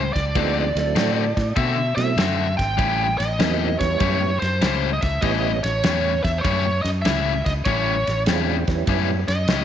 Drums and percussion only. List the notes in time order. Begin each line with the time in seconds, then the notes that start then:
0.16 kick, snare, ride
0.35 kick, ride
0.77 snare, ride
0.96 snare, ride
1.37 kick, snare, ride
1.56 kick, ride
1.98 snare, ride
2.18 snare, ride
2.59 kick, snare, ride
2.79 kick, ride
3.20 snare, ride
3.40 snare, ride
3.81 kick, snare, ride
4.00 kick, ride
4.42 snare, ride
4.62 snare, ride
5.02 kick, snare, ride
5.22 kick, ride
5.64 snare, ride
5.84 snare, ride
6.25 kick, snare, ride
6.45 kick, ride
6.85 snare, ride
7.05 snare, ride
7.46 kick, snare, ride
7.65 kick, ride
8.07 snare, ride
8.26 snare, ride
8.68 kick, snare, ride
8.87 kick, ride
9.28 snare, ride
9.48 snare, ride